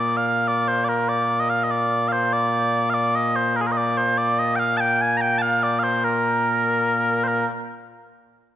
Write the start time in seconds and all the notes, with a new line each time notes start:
Already playing: A#2 A#3 D5
0.17 F5
0.27 F5
0.48 D5
0.68 C5
0.85 D5
0.89 A#4
1.09 D5
1.40 D#5
1.50 F5
1.64 D#5
1.71 D5
2.08 F5
2.12 C5
2.33 D5
2.90 F5
2.94 D5
3.15 D#5
3.36 C5
3.56 A#4
3.61 G#4
3.67 A#4
3.72 D#5
3.77 D5
3.98 C5
4.18 D5
4.39 D#5
4.56 F5 G5
4.77 G5 A5
5.01 G#5
5.17 A#5
5.21 G5
5.38 F5 A5
5.63 D5
5.79 F5
5.83 C5
6.04 A#4
7.24 A#4 C5